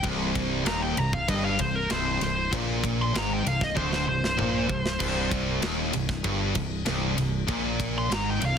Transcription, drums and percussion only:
0.04 kick, ride
0.35 kick, ride
0.66 snare, ride
0.97 ride
1.13 kick
1.28 kick, ride
1.59 kick, ride
1.90 snare, ride
2.21 snare, ride
2.53 kick, ride
2.84 kick, ride
3.15 snare, ride
3.47 ride
3.61 kick, snare
3.77 kick, high tom
3.93 snare
4.24 snare
4.39 mid tom
4.69 kick
4.86 snare
5.00 kick, crash
5.31 kick, ride
5.62 snare, ride
5.93 ride
6.09 kick, snare
6.24 kick, ride
6.55 kick, ride
6.86 snare, ride
7.18 ride
7.48 kick, ride
7.80 kick, ride
8.12 snare, ride
8.42 ride

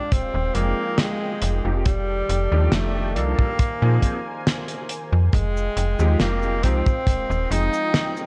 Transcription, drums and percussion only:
0.12 kick, closed hi-hat
0.55 closed hi-hat
0.98 snare, closed hi-hat
1.42 closed hi-hat
1.85 kick, closed hi-hat
2.29 closed hi-hat
2.72 snare, closed hi-hat
3.16 closed hi-hat
3.39 kick
3.59 kick, closed hi-hat
4.02 kick, closed hi-hat
4.47 snare, closed hi-hat
4.68 closed hi-hat
4.89 closed hi-hat
5.33 kick, closed hi-hat, cabasa
5.57 cabasa
5.77 closed hi-hat
5.99 cabasa
6.20 snare, closed hi-hat, cabasa
6.43 cabasa
6.63 kick, closed hi-hat
6.86 kick, cabasa
7.07 kick, closed hi-hat, cabasa
7.31 cabasa
7.51 closed hi-hat
7.73 cabasa
7.94 snare, closed hi-hat, cabasa
8.17 cabasa

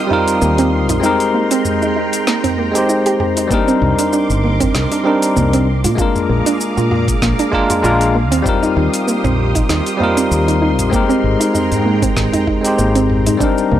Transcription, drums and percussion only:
0.11 mid tom
0.28 open hi-hat, shaker
0.42 shaker
0.58 open hi-hat, shaker
0.89 mid tom, open hi-hat, shaker
1.03 shaker
1.20 open hi-hat, shaker
1.51 open hi-hat, shaker
1.65 mid tom, shaker
1.82 shaker
2.13 open hi-hat, shaker
2.27 snare, shaker
2.44 mid tom, open hi-hat, shaker
2.75 open hi-hat, shaker
2.89 shaker
3.06 open hi-hat, shaker
3.20 mid tom
3.37 open hi-hat, shaker
3.51 kick, shaker
3.68 shaker
3.82 mid tom
3.99 open hi-hat, shaker
4.13 shaker
4.30 shaker
4.60 kick, mid tom, open hi-hat, shaker
4.75 snare, shaker
4.92 open hi-hat, shaker
5.22 open hi-hat, shaker
5.36 mid tom, shaker
5.53 open hi-hat, shaker
5.84 open hi-hat, shaker
5.98 kick, shaker
6.15 mid tom, shaker
6.46 open hi-hat, shaker
6.61 shaker
6.78 shaker
6.91 mid tom
7.08 kick, open hi-hat, shaker
7.22 kick, snare, shaker
7.39 open hi-hat, shaker
7.53 kick
7.70 mid tom, open hi-hat, shaker
7.84 shaker
8.01 open hi-hat, shaker
8.32 open hi-hat, shaker
8.46 kick, mid tom, shaker
8.63 shaker
8.94 open hi-hat, shaker
9.08 shaker
9.25 mid tom, shaker
9.55 kick, open hi-hat, shaker
9.69 snare, shaker
9.86 open hi-hat, shaker
10.00 mid tom
10.17 open hi-hat, shaker
10.32 shaker
10.48 open hi-hat, shaker
10.79 mid tom, open hi-hat, shaker
10.93 kick, shaker
11.10 shaker
11.41 open hi-hat, shaker
11.55 mid tom, shaker
11.72 open hi-hat, shaker
12.02 kick, open hi-hat, shaker
12.16 kick, snare, shaker
12.33 mid tom, open hi-hat, shaker
12.47 kick
12.65 open hi-hat, shaker
12.79 shaker
12.95 open hi-hat, shaker
13.10 mid tom
13.26 open hi-hat, shaker
13.40 kick, shaker
13.58 shaker
13.72 mid tom

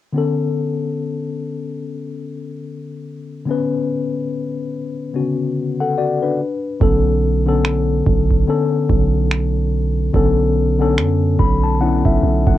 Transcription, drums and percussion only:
6.81 kick
7.65 finger snap
8.06 kick
8.30 kick
8.90 kick
9.31 finger snap
10.14 kick
10.98 finger snap
11.39 kick
12.05 kick
12.47 kick

